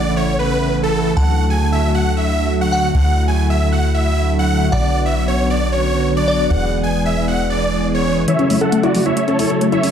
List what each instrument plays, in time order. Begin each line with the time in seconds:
Already playing: analog synth bass A1, supersaw synth D5, synth bell F#5
0.06 analog synth pad C#3 E3 A3 E4
0.17 supersaw synth C#5
0.39 analog synth pad C#3 E3 A3 E4, supersaw synth B4
0.61 analog synth pad C#3 E3 A3 E4
0.72 analog synth pad C#3 E3 A3 E4
0.83 supersaw synth A4
0.94 analog synth pad C#3 E3 A3 E4
1.17 analog synth bass D2, analog synth pad D3 F#3 A3 F#4, supersaw synth F#5, synth bell A5
1.39 analog synth pad D3 F#3 A3 F#4
1.50 supersaw synth G#5
1.61 analog synth pad D3 F#3 A3 F#4
1.72 supersaw synth E5
1.83 analog synth pad D3 F#3 A3 F#4
1.95 supersaw synth F#5
2.17 analog synth pad D3 F#3 A3 F#4, supersaw synth E5
2.39 analog synth pad D3 F#3 A3 F#4
2.50 analog synth pad D3 F#3 A3 F#4
2.61 supersaw synth F#5
2.72 analog synth pad D3 F#3 A3 F#4, synth bell F#5
2.94 analog synth bass D2, analog synth pad D3 F#3 A3 E4, supersaw synth F#5
3.17 analog synth pad D3 F#3 A3 E4
3.28 supersaw synth G#5
3.39 analog synth pad D3 F#3 A3 E4
3.50 supersaw synth E5
3.61 analog synth pad D3 F#3 A3 E4
3.72 supersaw synth F#5
3.94 analog synth pad D3 F#3 A3 E4, supersaw synth E5
4.17 analog synth pad D3 F#3 A3 E4
4.28 analog synth pad D3 F#3 A3 E4
4.39 supersaw synth F#5
4.50 analog synth pad D3 F#3 A3 E4
4.72 analog synth bass B1, analog synth pad D3 F#3 B3 F#4, supersaw synth D5, synth bell F#5
4.94 analog synth pad D3 F#3 B3 F#4
5.06 supersaw synth E5
5.17 analog synth pad D3 F#3 B3 F#4
5.28 supersaw synth C#5
5.39 analog synth pad D3 F#3 B3 F#4
5.50 supersaw synth D5
5.72 analog synth pad D3 F#3 B3 F#4, supersaw synth C#5
5.95 analog synth pad D3 F#3 B3 F#4
6.06 analog synth pad D3 F#3 B3 F#4
6.17 supersaw synth D5
6.28 analog synth pad D3 F#3 B3 F#4, synth bell D5
6.50 analog synth bass E1, analog synth pad E3 G#3 B3 G#4, supersaw synth F#5
6.72 analog synth pad E3 G#3 B3 G#4
6.83 supersaw synth G#5
6.94 analog synth pad E3 G#3 B3 G#4
7.06 supersaw synth E5
7.17 analog synth pad E3 G#3 B3 G#4
7.28 supersaw synth F#5
7.50 analog synth pad E3 G#3 B3 G#4, supersaw synth D5
7.72 analog synth pad E3 G#3 B3 G#4
7.83 analog synth pad E3 G#3 B3 G#4
7.95 supersaw synth C#5
8.05 analog synth pad E3 G#3 B3 G#4
8.28 analog synth pad C#3 F#3 A3 E4, synth pluck E3, supersaw synth C#5 E5, grand piano E5, closed hi-hat
8.39 analog synth bass F#1, synth pluck C#4, closed hi-hat
8.50 analog synth bass F#2, analog synth pad C#3 F#3 A3 E4, synth pluck A3, open hi-hat
8.61 analog synth bass F#1, synth pluck A4, supersaw synth A4 F#5, grand piano F#5, closed hi-hat
8.72 analog synth pad C#3 F#3 A3 E4, synth pluck A3, closed hi-hat
8.83 analog synth bass F#1, synth pluck E4, supersaw synth F#4 D5, grand piano D5, closed hi-hat
8.94 analog synth bass F#2, analog synth pad C#3 F#3 A3 E4, synth pluck A3, open hi-hat
9.06 analog synth bass F#1, synth pluck E4, supersaw synth C#5 E5, grand piano E5, closed hi-hat
9.17 synth pluck A3, closed hi-hat
9.28 analog synth bass F#1, analog synth pad C#3 F#3 A3 E4, synth pluck C#4, supersaw synth A4 C#5, grand piano C#5, closed hi-hat
9.39 analog synth bass F#1, synth pluck E4, open hi-hat
9.50 analog synth bass F#1, analog synth pad C#3 F#3 A3 E4, synth pluck A4, closed hi-hat
9.61 analog synth pad C#3 F#3 A3 E4, synth pluck A3, closed hi-hat
9.72 analog synth bass F#1, synth pluck E4, supersaw synth C#5 E5, grand piano E5, closed hi-hat
9.83 analog synth bass F#1, analog synth pad C#3 F#3 A3 E4, synth pluck C#4, open hi-hat